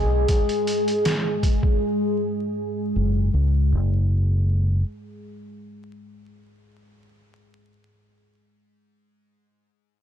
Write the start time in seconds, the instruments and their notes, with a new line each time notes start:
Already playing: fingered electric bass B1, ambient pad G#3 G#4
0.28 kick, closed hi-hat
0.49 closed hi-hat
0.67 closed hi-hat
0.88 closed hi-hat
1.05 snare, closed hi-hat
1.43 kick, closed hi-hat
1.63 kick
2.96 fingered electric bass F#1
3.34 fingered electric bass C#2
3.73 fingered electric bass F#1